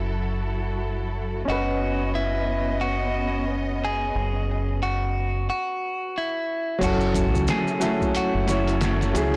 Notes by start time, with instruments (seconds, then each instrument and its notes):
Already playing: fingered electric bass F#1, upright piano F#3 C#4 A4 E5, string section F#3 E4 A4, synth drone F#4
1.45 fingered electric bass F#1, string section B3 C#4 D#5, upright piano C#4 D#5
1.50 clean electric guitar F#4, upright piano B4
2.15 clean electric guitar E4
2.81 clean electric guitar F#4
3.85 clean electric guitar G#4
4.15 fingered electric bass F#1
4.83 clean electric guitar F#4
5.50 clean electric guitar F#4
6.18 clean electric guitar E4
6.79 fingered electric bass F#1, upright piano F#3 C#4, string section F#3 A3 E4, kick, closed hi-hat, crash, maracas
6.83 upright piano E4 A4, clean electric guitar F#4
7.01 maracas
7.14 kick, closed hi-hat, maracas
7.34 fingered electric bass C#2, kick, maracas
7.47 clean electric guitar G#4, snare, closed hi-hat, maracas
7.68 maracas
7.80 upright piano F#3 A3 C#4 E4, snare, closed hi-hat, maracas
8.01 kick, maracas
8.15 clean electric guitar F#4, closed hi-hat, maracas
8.35 fingered electric bass F#1
8.47 upright piano F#3 C#4 E4 C#5, snare, closed hi-hat, maracas
8.68 closed hi-hat, maracas
8.81 snare, closed hi-hat, maracas
9.01 snare, maracas
9.13 fingered electric bass C#2, upright piano F#3 C#4 E4 G#4, snare, closed hi-hat, maracas